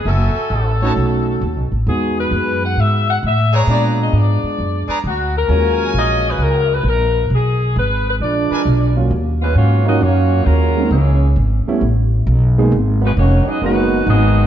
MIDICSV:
0, 0, Header, 1, 7, 480
1, 0, Start_track
1, 0, Key_signature, -6, "minor"
1, 0, Tempo, 452489
1, 62, Time_signature, 4, 2, 24, 8
1, 15348, End_track
2, 0, Start_track
2, 0, Title_t, "Trumpet section"
2, 0, Program_c, 0, 61
2, 59, Note_on_c, 0, 80, 82
2, 60, Note_on_c, 0, 66, 82
2, 61, Note_on_c, 0, 76, 73
2, 63, Note_on_c, 0, 69, 73
2, 797, Note_off_c, 0, 66, 0
2, 797, Note_off_c, 0, 80, 0
2, 798, Note_off_c, 0, 76, 0
2, 799, Note_off_c, 0, 69, 0
2, 868, Note_on_c, 0, 71, 75
2, 868, Note_on_c, 0, 73, 81
2, 869, Note_on_c, 0, 63, 76
2, 871, Note_on_c, 0, 81, 92
2, 974, Note_off_c, 0, 71, 0
2, 974, Note_off_c, 0, 73, 0
2, 975, Note_off_c, 0, 63, 0
2, 976, Note_off_c, 0, 81, 0
2, 3739, Note_on_c, 0, 71, 77
2, 3740, Note_on_c, 0, 82, 113
2, 3741, Note_on_c, 0, 74, 77
2, 3744, Note_on_c, 0, 68, 97
2, 4349, Note_off_c, 0, 71, 0
2, 4349, Note_off_c, 0, 82, 0
2, 4350, Note_off_c, 0, 74, 0
2, 4352, Note_off_c, 0, 68, 0
2, 5181, Note_on_c, 0, 68, 92
2, 5181, Note_on_c, 0, 82, 90
2, 5182, Note_on_c, 0, 74, 75
2, 5184, Note_on_c, 0, 71, 77
2, 5290, Note_off_c, 0, 68, 0
2, 5290, Note_off_c, 0, 82, 0
2, 5291, Note_off_c, 0, 71, 0
2, 5291, Note_off_c, 0, 74, 0
2, 5817, Note_on_c, 0, 80, 105
2, 5819, Note_on_c, 0, 77, 81
2, 5822, Note_on_c, 0, 73, 78
2, 7164, Note_off_c, 0, 80, 0
2, 7165, Note_off_c, 0, 77, 0
2, 7167, Note_off_c, 0, 73, 0
2, 9022, Note_on_c, 0, 71, 68
2, 9023, Note_on_c, 0, 70, 69
2, 9023, Note_on_c, 0, 80, 89
2, 9027, Note_on_c, 0, 62, 83
2, 9131, Note_off_c, 0, 71, 0
2, 9132, Note_off_c, 0, 70, 0
2, 9132, Note_off_c, 0, 80, 0
2, 9134, Note_off_c, 0, 62, 0
2, 15348, End_track
3, 0, Start_track
3, 0, Title_t, "Saxophone section"
3, 0, Program_c, 1, 65
3, 76, Note_on_c, 1, 69, 80
3, 1830, Note_off_c, 1, 69, 0
3, 1991, Note_on_c, 1, 68, 78
3, 2284, Note_off_c, 1, 68, 0
3, 2323, Note_on_c, 1, 71, 79
3, 2760, Note_off_c, 1, 71, 0
3, 2800, Note_on_c, 1, 78, 90
3, 2951, Note_off_c, 1, 78, 0
3, 2964, Note_on_c, 1, 76, 92
3, 3273, Note_off_c, 1, 76, 0
3, 3281, Note_on_c, 1, 78, 98
3, 3349, Note_off_c, 1, 78, 0
3, 3456, Note_on_c, 1, 76, 100
3, 3738, Note_off_c, 1, 76, 0
3, 3762, Note_on_c, 1, 73, 82
3, 3830, Note_off_c, 1, 73, 0
3, 3933, Note_on_c, 1, 74, 83
3, 4070, Note_off_c, 1, 74, 0
3, 4258, Note_on_c, 1, 75, 70
3, 4391, Note_off_c, 1, 75, 0
3, 4417, Note_on_c, 1, 74, 79
3, 5199, Note_off_c, 1, 74, 0
3, 5381, Note_on_c, 1, 66, 83
3, 5661, Note_off_c, 1, 66, 0
3, 5696, Note_on_c, 1, 70, 96
3, 6277, Note_off_c, 1, 70, 0
3, 6343, Note_on_c, 1, 75, 111
3, 6643, Note_off_c, 1, 75, 0
3, 6670, Note_on_c, 1, 71, 99
3, 6807, Note_off_c, 1, 71, 0
3, 6818, Note_on_c, 1, 70, 90
3, 7120, Note_off_c, 1, 70, 0
3, 7140, Note_on_c, 1, 71, 98
3, 7282, Note_off_c, 1, 71, 0
3, 7292, Note_on_c, 1, 70, 86
3, 7725, Note_off_c, 1, 70, 0
3, 7788, Note_on_c, 1, 68, 75
3, 8246, Note_off_c, 1, 68, 0
3, 8259, Note_on_c, 1, 71, 87
3, 8540, Note_off_c, 1, 71, 0
3, 8574, Note_on_c, 1, 71, 80
3, 8639, Note_off_c, 1, 71, 0
3, 8718, Note_on_c, 1, 74, 75
3, 9469, Note_off_c, 1, 74, 0
3, 9991, Note_on_c, 1, 65, 66
3, 9994, Note_on_c, 1, 71, 82
3, 9996, Note_on_c, 1, 56, 64
3, 9997, Note_on_c, 1, 61, 67
3, 10131, Note_off_c, 1, 65, 0
3, 10139, Note_off_c, 1, 56, 0
3, 10139, Note_off_c, 1, 71, 0
3, 10139, Note_on_c, 1, 66, 85
3, 10140, Note_off_c, 1, 61, 0
3, 10141, Note_on_c, 1, 73, 96
3, 10143, Note_on_c, 1, 58, 75
3, 10144, Note_on_c, 1, 65, 89
3, 10439, Note_off_c, 1, 66, 0
3, 10440, Note_off_c, 1, 73, 0
3, 10441, Note_off_c, 1, 58, 0
3, 10442, Note_off_c, 1, 65, 0
3, 10471, Note_on_c, 1, 61, 83
3, 10471, Note_on_c, 1, 75, 88
3, 10472, Note_on_c, 1, 70, 86
3, 10473, Note_on_c, 1, 66, 87
3, 10611, Note_off_c, 1, 66, 0
3, 10617, Note_off_c, 1, 61, 0
3, 10617, Note_off_c, 1, 70, 0
3, 10617, Note_off_c, 1, 75, 0
3, 10623, Note_on_c, 1, 66, 87
3, 10629, Note_on_c, 1, 58, 79
3, 10630, Note_on_c, 1, 65, 75
3, 10630, Note_on_c, 1, 73, 92
3, 11063, Note_off_c, 1, 65, 0
3, 11076, Note_on_c, 1, 54, 76
3, 11076, Note_on_c, 1, 65, 72
3, 11076, Note_on_c, 1, 70, 83
3, 11077, Note_on_c, 1, 61, 76
3, 11104, Note_off_c, 1, 66, 0
3, 11107, Note_off_c, 1, 58, 0
3, 11107, Note_off_c, 1, 73, 0
3, 11565, Note_on_c, 1, 58, 68
3, 11565, Note_on_c, 1, 64, 74
3, 11567, Note_on_c, 1, 68, 65
3, 11569, Note_on_c, 1, 73, 75
3, 11570, Note_off_c, 1, 54, 0
3, 11570, Note_off_c, 1, 65, 0
3, 11570, Note_off_c, 1, 70, 0
3, 11571, Note_off_c, 1, 61, 0
3, 12020, Note_off_c, 1, 58, 0
3, 12020, Note_off_c, 1, 64, 0
3, 12021, Note_off_c, 1, 68, 0
3, 12023, Note_off_c, 1, 73, 0
3, 13834, Note_on_c, 1, 66, 66
3, 13837, Note_on_c, 1, 63, 69
3, 13841, Note_on_c, 1, 56, 71
3, 13843, Note_on_c, 1, 71, 71
3, 13904, Note_off_c, 1, 66, 0
3, 13906, Note_off_c, 1, 63, 0
3, 13909, Note_off_c, 1, 56, 0
3, 13911, Note_off_c, 1, 71, 0
3, 13977, Note_on_c, 1, 58, 85
3, 13978, Note_on_c, 1, 73, 93
3, 13988, Note_on_c, 1, 63, 81
3, 13990, Note_on_c, 1, 66, 86
3, 14277, Note_off_c, 1, 58, 0
3, 14278, Note_off_c, 1, 73, 0
3, 14283, Note_off_c, 1, 63, 0
3, 14284, Note_off_c, 1, 66, 0
3, 14297, Note_on_c, 1, 59, 86
3, 14301, Note_on_c, 1, 75, 98
3, 14304, Note_on_c, 1, 68, 78
3, 14311, Note_on_c, 1, 66, 93
3, 14443, Note_off_c, 1, 66, 0
3, 14455, Note_on_c, 1, 63, 84
3, 14455, Note_on_c, 1, 66, 83
3, 14460, Note_off_c, 1, 59, 0
3, 14460, Note_on_c, 1, 71, 87
3, 14462, Note_off_c, 1, 75, 0
3, 14463, Note_off_c, 1, 68, 0
3, 14464, Note_on_c, 1, 56, 83
3, 14904, Note_off_c, 1, 63, 0
3, 14905, Note_off_c, 1, 66, 0
3, 14907, Note_off_c, 1, 71, 0
3, 14909, Note_off_c, 1, 56, 0
3, 14940, Note_on_c, 1, 59, 90
3, 14941, Note_on_c, 1, 66, 87
3, 14943, Note_on_c, 1, 75, 105
3, 14945, Note_on_c, 1, 68, 93
3, 15348, Note_off_c, 1, 59, 0
3, 15348, Note_off_c, 1, 66, 0
3, 15348, Note_off_c, 1, 68, 0
3, 15348, Note_off_c, 1, 75, 0
3, 15348, End_track
4, 0, Start_track
4, 0, Title_t, "Grand piano"
4, 0, Program_c, 2, 0
4, 867, Note_on_c, 2, 57, 61
4, 873, Note_on_c, 2, 63, 50
4, 875, Note_on_c, 2, 61, 55
4, 879, Note_on_c, 2, 66, 69
4, 1473, Note_off_c, 2, 57, 0
4, 1476, Note_off_c, 2, 63, 0
4, 1477, Note_off_c, 2, 61, 0
4, 1479, Note_off_c, 2, 66, 0
4, 1991, Note_on_c, 2, 56, 54
4, 1997, Note_on_c, 2, 59, 57
4, 2001, Note_on_c, 2, 63, 51
4, 2005, Note_on_c, 2, 66, 57
4, 3331, Note_off_c, 2, 56, 0
4, 3334, Note_off_c, 2, 59, 0
4, 3336, Note_off_c, 2, 63, 0
4, 3338, Note_off_c, 2, 66, 0
4, 3904, Note_on_c, 2, 56, 57
4, 3906, Note_on_c, 2, 59, 44
4, 3909, Note_on_c, 2, 62, 52
4, 3914, Note_on_c, 2, 65, 56
4, 5247, Note_off_c, 2, 56, 0
4, 5248, Note_off_c, 2, 59, 0
4, 5249, Note_off_c, 2, 62, 0
4, 5252, Note_off_c, 2, 65, 0
4, 5825, Note_on_c, 2, 54, 45
4, 5827, Note_on_c, 2, 56, 41
4, 5833, Note_on_c, 2, 61, 44
4, 5834, Note_on_c, 2, 65, 51
4, 7168, Note_off_c, 2, 54, 0
4, 7169, Note_off_c, 2, 56, 0
4, 7172, Note_off_c, 2, 61, 0
4, 7173, Note_off_c, 2, 65, 0
4, 9506, Note_on_c, 2, 39, 48
4, 9508, Note_on_c, 2, 54, 48
4, 9513, Note_on_c, 2, 58, 43
4, 9515, Note_on_c, 2, 65, 61
4, 9516, Note_on_c, 2, 61, 51
4, 9649, Note_off_c, 2, 39, 0
4, 9650, Note_off_c, 2, 54, 0
4, 9653, Note_off_c, 2, 58, 0
4, 9654, Note_off_c, 2, 61, 0
4, 9654, Note_off_c, 2, 65, 0
4, 10464, Note_on_c, 2, 54, 62
4, 10465, Note_on_c, 2, 58, 63
4, 10474, Note_on_c, 2, 63, 60
4, 10475, Note_on_c, 2, 65, 74
4, 10476, Note_on_c, 2, 61, 67
4, 10608, Note_off_c, 2, 54, 0
4, 10609, Note_off_c, 2, 58, 0
4, 10614, Note_off_c, 2, 61, 0
4, 10614, Note_off_c, 2, 63, 0
4, 10614, Note_off_c, 2, 65, 0
4, 11423, Note_on_c, 2, 56, 54
4, 11429, Note_on_c, 2, 58, 54
4, 11430, Note_on_c, 2, 60, 47
4, 11436, Note_on_c, 2, 61, 48
4, 11438, Note_on_c, 2, 63, 56
4, 11568, Note_off_c, 2, 56, 0
4, 11571, Note_off_c, 2, 58, 0
4, 11572, Note_off_c, 2, 60, 0
4, 11574, Note_off_c, 2, 61, 0
4, 11576, Note_off_c, 2, 63, 0
4, 12385, Note_on_c, 2, 57, 56
4, 12391, Note_on_c, 2, 59, 66
4, 12392, Note_on_c, 2, 55, 67
4, 12392, Note_on_c, 2, 61, 66
4, 12399, Note_on_c, 2, 64, 79
4, 12529, Note_off_c, 2, 57, 0
4, 12532, Note_off_c, 2, 55, 0
4, 12532, Note_off_c, 2, 59, 0
4, 12532, Note_off_c, 2, 61, 0
4, 12536, Note_off_c, 2, 64, 0
4, 13345, Note_on_c, 2, 56, 76
4, 13348, Note_on_c, 2, 58, 69
4, 13352, Note_on_c, 2, 59, 63
4, 13357, Note_on_c, 2, 63, 77
4, 13357, Note_on_c, 2, 68, 82
4, 13488, Note_off_c, 2, 56, 0
4, 13490, Note_off_c, 2, 58, 0
4, 13492, Note_off_c, 2, 59, 0
4, 13494, Note_off_c, 2, 63, 0
4, 13494, Note_off_c, 2, 68, 0
4, 14468, Note_on_c, 2, 56, 60
4, 14471, Note_on_c, 2, 58, 54
4, 14472, Note_on_c, 2, 59, 50
4, 14472, Note_on_c, 2, 63, 57
4, 14475, Note_on_c, 2, 66, 71
4, 14753, Note_off_c, 2, 56, 0
4, 14754, Note_off_c, 2, 58, 0
4, 14755, Note_off_c, 2, 59, 0
4, 14755, Note_off_c, 2, 63, 0
4, 14756, Note_off_c, 2, 66, 0
4, 15348, End_track
5, 0, Start_track
5, 0, Title_t, "Trombone section"
5, 0, Program_c, 3, 61
5, 8728, Note_on_c, 3, 56, 74
5, 8730, Note_on_c, 3, 53, 75
5, 8731, Note_on_c, 3, 62, 75
5, 9474, Note_off_c, 3, 56, 0
5, 9475, Note_off_c, 3, 53, 0
5, 9475, Note_off_c, 3, 62, 0
5, 9991, Note_on_c, 3, 59, 78
5, 10126, Note_on_c, 3, 54, 82
5, 10127, Note_on_c, 3, 58, 72
5, 10129, Note_on_c, 3, 61, 84
5, 10137, Note_off_c, 3, 59, 0
5, 10432, Note_off_c, 3, 54, 0
5, 10433, Note_off_c, 3, 58, 0
5, 10434, Note_off_c, 3, 61, 0
5, 10447, Note_on_c, 3, 54, 93
5, 10450, Note_on_c, 3, 58, 99
5, 10451, Note_on_c, 3, 63, 92
5, 10592, Note_off_c, 3, 54, 0
5, 10601, Note_off_c, 3, 58, 0
5, 10605, Note_on_c, 3, 54, 83
5, 10606, Note_off_c, 3, 63, 0
5, 10607, Note_on_c, 3, 61, 85
5, 10614, Note_on_c, 3, 58, 92
5, 11062, Note_off_c, 3, 58, 0
5, 11068, Note_off_c, 3, 54, 0
5, 11075, Note_on_c, 3, 58, 72
5, 11079, Note_on_c, 3, 49, 69
5, 11081, Note_on_c, 3, 54, 70
5, 11096, Note_off_c, 3, 61, 0
5, 11566, Note_on_c, 3, 52, 65
5, 11566, Note_on_c, 3, 56, 72
5, 11570, Note_off_c, 3, 58, 0
5, 11572, Note_off_c, 3, 49, 0
5, 11572, Note_on_c, 3, 61, 70
5, 11573, Note_off_c, 3, 54, 0
5, 12021, Note_off_c, 3, 52, 0
5, 12021, Note_off_c, 3, 56, 0
5, 12024, Note_off_c, 3, 61, 0
5, 13804, Note_on_c, 3, 51, 71
5, 13807, Note_on_c, 3, 59, 77
5, 13808, Note_on_c, 3, 54, 71
5, 13880, Note_off_c, 3, 51, 0
5, 13883, Note_off_c, 3, 54, 0
5, 13883, Note_off_c, 3, 59, 0
5, 13975, Note_on_c, 3, 61, 76
5, 14276, Note_off_c, 3, 61, 0
5, 14282, Note_on_c, 3, 63, 98
5, 14287, Note_on_c, 3, 59, 83
5, 14291, Note_on_c, 3, 54, 88
5, 14425, Note_off_c, 3, 54, 0
5, 14427, Note_off_c, 3, 59, 0
5, 14435, Note_on_c, 3, 51, 84
5, 14438, Note_on_c, 3, 54, 83
5, 14440, Note_on_c, 3, 59, 77
5, 14453, Note_off_c, 3, 63, 0
5, 14892, Note_off_c, 3, 54, 0
5, 14894, Note_off_c, 3, 51, 0
5, 14897, Note_off_c, 3, 59, 0
5, 14905, Note_on_c, 3, 54, 89
5, 14907, Note_on_c, 3, 63, 80
5, 14908, Note_on_c, 3, 59, 90
5, 15348, Note_off_c, 3, 54, 0
5, 15348, Note_off_c, 3, 59, 0
5, 15348, Note_off_c, 3, 63, 0
5, 15348, End_track
6, 0, Start_track
6, 0, Title_t, "Upright bass"
6, 0, Program_c, 4, 32
6, 56, Note_on_c, 4, 30, 87
6, 356, Note_off_c, 4, 30, 0
6, 532, Note_on_c, 4, 33, 88
6, 1003, Note_off_c, 4, 33, 0
6, 1020, Note_on_c, 4, 35, 74
6, 1487, Note_off_c, 4, 35, 0
6, 1500, Note_on_c, 4, 39, 85
6, 1659, Note_off_c, 4, 39, 0
6, 1659, Note_on_c, 4, 35, 47
6, 1815, Note_off_c, 4, 35, 0
6, 1821, Note_on_c, 4, 33, 63
6, 1971, Note_off_c, 4, 33, 0
6, 1979, Note_on_c, 4, 40, 89
6, 2447, Note_off_c, 4, 40, 0
6, 2452, Note_on_c, 4, 42, 83
6, 2923, Note_off_c, 4, 42, 0
6, 2939, Note_on_c, 4, 44, 65
6, 3406, Note_off_c, 4, 44, 0
6, 3424, Note_on_c, 4, 45, 85
6, 3886, Note_off_c, 4, 45, 0
6, 3892, Note_on_c, 4, 46, 80
6, 4363, Note_off_c, 4, 46, 0
6, 4378, Note_on_c, 4, 44, 77
6, 4678, Note_off_c, 4, 44, 0
6, 4863, Note_on_c, 4, 42, 73
6, 5160, Note_off_c, 4, 42, 0
6, 5344, Note_on_c, 4, 38, 80
6, 5809, Note_off_c, 4, 38, 0
6, 5821, Note_on_c, 4, 39, 91
6, 6287, Note_off_c, 4, 39, 0
6, 6298, Note_on_c, 4, 34, 79
6, 6763, Note_off_c, 4, 34, 0
6, 6769, Note_on_c, 4, 37, 81
6, 7242, Note_off_c, 4, 37, 0
6, 7251, Note_on_c, 4, 34, 85
6, 7723, Note_off_c, 4, 34, 0
6, 7743, Note_on_c, 4, 35, 82
6, 8209, Note_off_c, 4, 35, 0
6, 8230, Note_on_c, 4, 32, 87
6, 8693, Note_off_c, 4, 32, 0
6, 8703, Note_on_c, 4, 34, 67
6, 9001, Note_off_c, 4, 34, 0
6, 9180, Note_on_c, 4, 35, 91
6, 9648, Note_off_c, 4, 35, 0
6, 9659, Note_on_c, 4, 39, 91
6, 10127, Note_off_c, 4, 39, 0
6, 10134, Note_on_c, 4, 44, 87
6, 10605, Note_off_c, 4, 44, 0
6, 10616, Note_on_c, 4, 42, 84
6, 11086, Note_off_c, 4, 42, 0
6, 11099, Note_on_c, 4, 39, 92
6, 11564, Note_off_c, 4, 39, 0
6, 11570, Note_on_c, 4, 37, 93
6, 12043, Note_off_c, 4, 37, 0
6, 12050, Note_on_c, 4, 32, 84
6, 12354, Note_off_c, 4, 32, 0
6, 12528, Note_on_c, 4, 33, 82
6, 13001, Note_off_c, 4, 33, 0
6, 13012, Note_on_c, 4, 35, 93
6, 13483, Note_off_c, 4, 35, 0
6, 13491, Note_on_c, 4, 32, 92
6, 13962, Note_off_c, 4, 32, 0
6, 13969, Note_on_c, 4, 29, 92
6, 14273, Note_off_c, 4, 29, 0
6, 14444, Note_on_c, 4, 30, 77
6, 14914, Note_off_c, 4, 30, 0
6, 14921, Note_on_c, 4, 32, 94
6, 15348, Note_off_c, 4, 32, 0
6, 15348, End_track
7, 0, Start_track
7, 0, Title_t, "Muted upright bass strokes"
7, 4702, Note_on_c, 9, 29, 40
7, 4808, Note_off_c, 9, 29, 0
7, 5178, Note_on_c, 9, 29, 40
7, 5284, Note_off_c, 9, 29, 0
7, 9020, Note_on_c, 9, 29, 34
7, 9126, Note_off_c, 9, 29, 0
7, 12375, Note_on_c, 9, 29, 43
7, 12481, Note_off_c, 9, 29, 0
7, 14279, Note_on_c, 9, 29, 39
7, 14385, Note_off_c, 9, 29, 0
7, 15348, End_track
0, 0, End_of_file